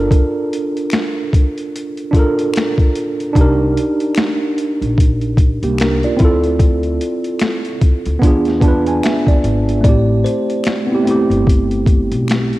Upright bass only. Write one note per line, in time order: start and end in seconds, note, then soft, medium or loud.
3.36 3.74 C2 loud
4.81 5.59 A#1 medium
5.62 6.01 C2 medium
6.20 6.97 D2 loud
8.06 8.21 D2 medium
8.22 8.99 E2 loud
9.44 9.82 G#1 medium
9.84 10.22 A1 loud
11.30 12.07 G1 medium
12.12 12.49 B1 medium